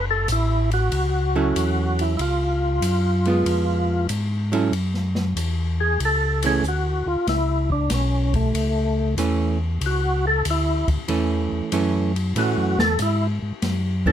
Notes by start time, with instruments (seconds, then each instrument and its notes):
Already playing: tonewheel organ F#1
0.11 tonewheel organ A4
0.28 tonewheel organ A1, hi-hat pedal, ride
0.32 tonewheel organ E4
0.71 tonewheel organ F#4, ride
0.92 tonewheel organ C#2, ride
1.35 hollow-body jazz guitar F#3 C#4 E4 A4
1.56 tonewheel organ E2, hi-hat pedal, ride
1.99 tonewheel organ E4, ride
2.17 tonewheel organ C#2 E4, ride
2.21 tonewheel organ F4
2.81 tonewheel organ F#2, hi-hat pedal, ride
3.25 hollow-body jazz guitar G#3 B3 F4, ride
3.46 tonewheel organ F2, ride
4.09 tonewheel organ G#2, hi-hat pedal, ride
4.52 hollow-body jazz guitar F#3 C#4 E4 A4, ride
4.72 tonewheel organ F#2, ride
4.94 snare
5.15 snare
5.36 tonewheel organ E2, hi-hat pedal, ride
5.80 tonewheel organ G#4
5.99 tonewheel organ C#2, ride
6.05 tonewheel organ A4
6.42 hollow-body jazz guitar E3 A3 C#4, ride
6.47 tonewheel organ G#4
6.63 tonewheel organ D2, hi-hat pedal
6.68 tonewheel organ F#4
7.06 tonewheel organ D2 F4
7.27 tonewheel organ C#2 E4, snare, ride
7.70 tonewheel organ D4, kick
7.90 tonewheel organ B1, snare, hi-hat pedal, ride
7.94 tonewheel organ C#4
8.34 tonewheel organ A3, kick, ride
8.54 tonewheel organ C#2, ride
9.17 tonewheel organ E2, hollow-body jazz guitar E3 A3 C#4, hi-hat pedal, ride
9.81 tonewheel organ C#2, ride
9.86 tonewheel organ F#4
10.27 tonewheel organ A4
10.45 tonewheel organ D2, hi-hat pedal, ride
10.50 tonewheel organ E4
10.88 tonewheel organ D2, kick, ride
11.08 tonewheel organ E2, hollow-body jazz guitar E3 A3 C#4, ride
11.52 tonewheel organ E2
11.72 tonewheel organ F#2, hollow-body jazz guitar E3 A3 C#4, hi-hat pedal, ride
12.16 ride
12.35 tonewheel organ A2 F#4, hollow-body jazz guitar E3 A3 C#4, ride
12.57 tonewheel organ F#2
12.78 tonewheel organ E2 A4, snare
12.99 tonewheel organ G#2 E4, hi-hat pedal, ride
13.42 tonewheel organ G#2
13.62 tonewheel organ F#2, snare, ride
14.06 hollow-body jazz guitar E3 A3 C#4, tonewheel organ A4, kick